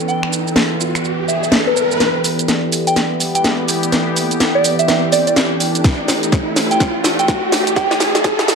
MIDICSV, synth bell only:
0, 0, Header, 1, 2, 480
1, 0, Start_track
1, 0, Key_signature, 1, "minor"
1, 0, Tempo, 480000
1, 84, Time_signature, 4, 2, 24, 8
1, 8550, End_track
2, 0, Start_track
2, 0, Title_t, "Synth bell"
2, 0, Program_c, 0, 98
2, 84, Note_on_c, 0, 79, 90
2, 230, Note_off_c, 0, 79, 0
2, 1283, Note_on_c, 0, 76, 86
2, 1378, Note_off_c, 0, 76, 0
2, 1432, Note_on_c, 0, 76, 72
2, 1491, Note_off_c, 0, 76, 0
2, 1673, Note_on_c, 0, 71, 82
2, 1731, Note_off_c, 0, 71, 0
2, 1764, Note_on_c, 0, 71, 76
2, 1859, Note_off_c, 0, 71, 0
2, 2872, Note_on_c, 0, 79, 88
2, 2963, Note_off_c, 0, 79, 0
2, 3352, Note_on_c, 0, 79, 86
2, 3443, Note_off_c, 0, 79, 0
2, 4551, Note_on_c, 0, 74, 92
2, 4642, Note_off_c, 0, 74, 0
2, 4791, Note_on_c, 0, 76, 88
2, 4851, Note_off_c, 0, 76, 0
2, 4883, Note_on_c, 0, 76, 75
2, 4978, Note_off_c, 0, 76, 0
2, 5123, Note_on_c, 0, 74, 89
2, 5218, Note_off_c, 0, 74, 0
2, 5271, Note_on_c, 0, 74, 74
2, 5330, Note_off_c, 0, 74, 0
2, 6712, Note_on_c, 0, 79, 92
2, 6803, Note_off_c, 0, 79, 0
2, 7193, Note_on_c, 0, 79, 88
2, 7283, Note_off_c, 0, 79, 0
2, 7764, Note_on_c, 0, 79, 94
2, 7910, Note_off_c, 0, 79, 0
2, 8550, End_track
0, 0, End_of_file